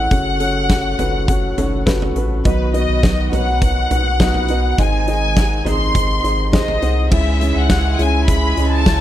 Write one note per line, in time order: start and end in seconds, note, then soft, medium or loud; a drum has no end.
0.00 2.41 C#3 medium
0.00 2.41 A3 medium
0.00 0.11 C#4 medium
0.00 0.14 E4 medium
0.00 0.11 A4 medium
0.00 0.11 C#5 medium
0.00 0.13 D#5 loud
0.00 0.13 E5 medium
0.00 2.12 F#5 loud
0.11 0.95 F#1 medium
0.11 0.95 C#3 medium
0.11 4.74 F#3 medium
0.11 0.32 C#4 medium
0.11 0.32 F#4 medium
0.11 4.74 F#4 medium
0.11 0.32 A4 medium
0.11 0.32 C#5 medium
0.11 kick loud
0.11 closed hi-hat medium
0.39 0.61 C#4 medium
0.39 0.61 F#4 medium
0.39 0.61 A4 medium
0.39 0.61 C#5 medium
0.39 closed hi-hat medium
0.70 0.91 C#4 medium
0.70 0.91 F#4 medium
0.70 0.91 A4 medium
0.70 0.91 C#5 medium
0.70 kick loud
0.70 snare medium
0.70 closed hi-hat medium
0.99 1.53 F#1 loud
0.99 1.20 C#4 medium
0.99 1.20 F#4 medium
0.99 1.20 A4 medium
0.99 1.20 B4 medium
0.99 closed hi-hat medium
0.99 floor tom medium
1.28 1.49 C#4 medium
1.28 1.49 F#4 medium
1.28 1.49 A4 medium
1.28 1.49 C#5 medium
1.28 kick loud
1.28 closed hi-hat medium
1.57 2.12 F#1 medium
1.57 1.79 C#4 medium
1.57 1.79 F#4 medium
1.57 1.79 A4 medium
1.57 1.79 C#5 medium
1.57 closed hi-hat medium
1.57 floor tom medium
1.86 2.07 C#4 loud
1.86 2.07 F#4 medium
1.86 2.07 A4 medium
1.86 2.07 B4 loud
1.86 kick medium
1.86 snare medium
1.86 closed hi-hat medium
2.02 floor tom medium
2.15 2.43 A1 medium
2.15 2.37 C#4 medium
2.15 2.37 F#4 medium
2.15 2.37 A4 medium
2.15 2.37 B4 medium
2.15 closed hi-hat medium
2.44 2.86 B1 loud
2.44 3.03 B2 medium
2.44 3.29 B2 medium
2.44 4.78 D#3 medium
2.44 7.08 D#3 medium
2.44 3.01 F#3 medium
2.44 3.29 F#3 medium
2.44 4.76 B3 medium
2.44 3.02 B3 medium
2.44 2.66 D#4 medium
2.44 3.04 D#4 medium
2.44 2.66 F#4 medium
2.44 2.66 B4 medium
2.44 3.04 B4 medium
2.44 2.73 B4 medium
2.44 2.66 D#5 medium
2.44 kick loud
2.44 closed hi-hat medium
2.74 2.95 D#4 medium
2.74 2.95 F#4 medium
2.74 2.95 B4 medium
2.74 2.95 D#5 medium
2.74 3.29 D#5 medium
2.74 closed hi-hat medium
2.89 3.29 B1 medium
3.02 3.32 F#3 medium
3.02 3.32 B3 medium
3.02 3.24 D#4 medium
3.02 3.31 D#4 medium
3.02 3.24 F#4 medium
3.02 3.24 B4 medium
3.02 3.30 B4 medium
3.02 kick loud
3.02 snare loud
3.02 closed hi-hat medium
3.31 3.87 B1 medium
3.31 4.18 F#3 soft
3.31 4.19 B3 medium
3.31 3.53 D#4 medium
3.31 4.21 D#4 medium
3.31 3.53 F#4 medium
3.31 4.19 B4 medium
3.31 3.53 B4 medium
3.31 3.53 C#5 medium
3.31 4.79 F#5 loud
3.31 closed hi-hat medium
3.31 floor tom medium
3.61 3.82 D#4 medium
3.61 3.82 F#4 medium
3.61 3.82 B4 medium
3.61 3.83 D#5 medium
3.61 kick loud
3.61 closed hi-hat medium
3.91 4.74 B1 medium
3.91 4.12 D#4 medium
3.91 4.12 F#4 medium
3.91 4.12 B4 medium
3.91 4.12 F#5 medium
3.91 closed hi-hat medium
3.91 floor tom medium
4.19 4.49 F#3 medium
4.19 4.49 B3 medium
4.19 4.41 D#4 loud
4.19 4.49 D#4 medium
4.19 4.41 F#4 medium
4.19 4.41 B4 medium
4.19 4.48 B4 medium
4.19 4.41 D#5 loud
4.19 kick medium
4.19 snare medium
4.19 closed hi-hat medium
4.34 floor tom medium
4.48 4.78 F#3 soft
4.48 4.79 B3 soft
4.48 4.70 D#4 medium
4.48 4.78 D#4 medium
4.48 4.70 F#4 medium
4.48 4.78 B4 medium
4.48 4.70 B4 medium
4.48 4.71 D#5 loud
4.48 closed hi-hat medium
4.78 5.62 G#1 loud
4.78 5.36 G#2 medium
4.78 5.62 G#2 medium
4.78 7.09 C3 medium
4.78 5.37 D#3 medium
4.78 5.62 D#3 medium
4.78 5.35 G#3 medium
4.78 7.10 G#3 medium
4.78 5.35 C4 medium
4.78 7.09 D#4 medium
4.78 4.99 D#4 medium
4.78 5.36 D#4 medium
4.78 4.99 G#4 medium
4.78 4.99 C5 medium
4.78 5.37 C5 medium
4.78 4.99 D#5 medium
4.78 5.08 G#5 loud
4.78 kick loud
4.78 closed hi-hat medium
5.08 5.29 D#4 medium
5.08 5.28 G#4 medium
5.08 5.29 C5 medium
5.08 5.29 D#5 loud
5.08 5.63 G#5 loud
5.08 closed hi-hat medium
5.35 5.65 G#3 medium
5.35 5.66 C4 medium
5.35 5.57 D#4 medium
5.35 5.65 D#4 medium
5.35 5.57 G#4 medium
5.35 5.57 C5 medium
5.35 5.64 C5 medium
5.35 5.58 F#5 medium
5.35 kick loud
5.35 snare medium
5.35 closed hi-hat medium
5.65 6.20 G#1 loud
5.65 6.51 G#3 soft
5.65 6.52 C4 soft
5.65 5.86 D#4 medium
5.65 6.53 D#4 medium
5.65 5.86 G#4 medium
5.65 6.53 C5 medium
5.65 5.86 C5 medium
5.65 5.87 D#5 medium
5.65 6.80 C6 loud
5.65 closed hi-hat medium
5.65 floor tom medium
5.95 6.16 D#4 medium
5.95 6.16 G#4 medium
5.95 6.16 C5 medium
5.95 6.16 D#5 medium
5.95 kick loud
5.95 closed hi-hat medium
6.24 6.78 G#1 medium
6.24 6.45 D#4 medium
6.24 6.45 G#4 medium
6.24 6.45 C5 medium
6.24 6.45 D#5 medium
6.24 closed hi-hat medium
6.52 6.82 G#3 medium
6.52 6.82 C4 medium
6.52 6.74 D#4 loud
6.52 6.81 D#4 medium
6.52 6.74 G#4 loud
6.52 6.74 C5 loud
6.52 6.80 C5 medium
6.52 6.74 D#5 loud
6.52 7.08 D#5 medium
6.52 kick loud
6.52 snare medium
6.52 closed hi-hat medium
6.68 floor tom medium
6.82 7.09 C2 medium
6.82 7.10 G#3 soft
6.82 7.11 C4 medium
6.82 7.03 D#4 medium
6.82 7.12 D#4 soft
6.82 7.03 G#4 medium
6.82 7.11 C5 medium
6.82 7.03 C5 medium
6.82 7.03 F#5 medium
6.82 closed hi-hat medium
7.11 7.52 C#2 loud
7.11 7.95 G#2 medium
7.11 9.01 C#3 medium
7.11 7.40 C#3 medium
7.11 9.01 E3 medium
7.11 9.01 G#3 medium
7.11 7.41 G#3 medium
7.11 9.01 G#3 medium
7.11 7.41 C#4 medium
7.11 9.01 E4 medium
7.11 7.32 E4 medium
7.11 7.40 E4 loud
7.11 7.32 G#4 medium
7.11 7.38 G#4 medium
7.11 7.32 C#5 medium
7.11 7.33 E5 medium
7.11 7.56 E5 medium
7.11 9.01 G#5 medium
7.11 kick loud
7.11 crash medium
7.39 7.69 C#4 soft
7.39 7.62 E4 medium
7.39 7.70 E4 medium
7.39 7.69 G#4 medium
7.39 7.62 G#4 medium
7.39 7.62 C#5 medium
7.39 7.62 E5 medium
7.39 closed hi-hat medium
7.55 7.96 C#2 loud
7.55 7.99 F#5 medium
7.69 7.99 C#3 medium
7.69 7.99 G#3 medium
7.69 7.99 C#4 medium
7.69 7.91 E4 medium
7.69 7.98 E4 loud
7.69 7.91 G#4 medium
7.69 7.97 G#4 medium
7.69 7.91 C#5 medium
7.69 7.91 E5 medium
7.69 kick loud
7.69 snare loud
7.69 closed hi-hat medium
7.98 8.53 C#2 medium
7.98 8.27 C#4 medium
7.98 8.20 E4 medium
7.98 8.28 E4 medium
7.98 8.28 G#4 medium
7.98 8.20 G#4 medium
7.98 8.20 C#5 medium
7.98 8.20 E5 loud
7.98 8.28 G#5 loud
7.98 closed hi-hat medium
8.28 8.57 G#3 medium
8.28 8.58 C#4 medium
8.28 8.49 E4 medium
8.28 8.57 E4 medium
8.28 8.49 G#4 medium
8.28 8.56 G#4 medium
8.28 8.49 C#5 medium
8.28 8.49 E5 medium
8.28 8.69 B5 loud
8.28 kick loud
8.28 closed hi-hat medium
8.57 9.01 C#2 medium
8.57 8.86 C#4 soft
8.57 8.78 E4 medium
8.57 8.86 E4 medium
8.57 8.86 G#4 medium
8.57 8.78 G#4 medium
8.57 8.78 C#5 medium
8.57 8.78 D#5 medium
8.57 closed hi-hat medium
8.73 9.01 A5 loud
8.85 9.01 C#3 medium
8.85 9.01 G#3 medium
8.85 9.01 C#4 medium
8.85 9.01 E4 medium
8.85 9.01 G#4 medium
8.85 9.01 G#4 loud
8.85 9.01 C#5 medium
8.85 9.01 E5 medium
8.85 kick loud
8.85 snare loud
8.85 closed hi-hat medium